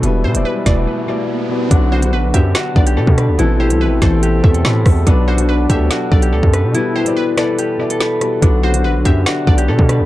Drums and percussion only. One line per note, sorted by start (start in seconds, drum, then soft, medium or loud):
0.03 closed hi-hat medium
0.35 closed hi-hat medium
0.66 kick medium
0.66 snare medium
0.66 closed hi-hat medium
1.71 kick loud
1.71 closed hi-hat medium
2.02 closed hi-hat medium
2.34 kick medium
2.34 closed hi-hat medium
2.55 snare loud
2.55 closed hi-hat medium
2.76 kick loud
2.87 closed hi-hat medium
3.07 kick medium
3.18 cross-stick medium
3.18 closed hi-hat medium
3.39 closed hi-hat medium
3.70 closed hi-hat medium
4.02 kick medium
4.02 snare medium
4.02 closed hi-hat medium
4.23 closed hi-hat medium
4.44 kick loud
4.54 closed hi-hat medium
4.65 snare loud
4.86 kick loud
4.86 cross-stick medium
4.86 open hi-hat medium
5.07 kick loud
5.07 closed hi-hat medium
5.38 closed hi-hat medium
5.70 kick medium
5.70 closed hi-hat medium
5.91 snare loud
5.91 closed hi-hat medium
6.12 kick loud
6.22 closed hi-hat medium
6.43 kick medium
6.54 cross-stick medium
6.54 closed hi-hat medium
6.75 closed hi-hat medium
7.06 closed hi-hat medium
7.38 cross-stick loud
7.38 snare medium
7.38 closed hi-hat medium
7.59 closed hi-hat medium
7.90 closed hi-hat medium
8.01 snare loud
8.21 cross-stick medium
8.21 closed hi-hat medium
8.42 kick loud
8.42 closed hi-hat medium
8.74 closed hi-hat medium
9.05 kick medium
9.05 closed hi-hat medium
9.26 snare loud
9.26 closed hi-hat medium
9.47 kick loud
9.58 closed hi-hat medium
9.79 kick medium
9.89 cross-stick medium
9.89 closed hi-hat medium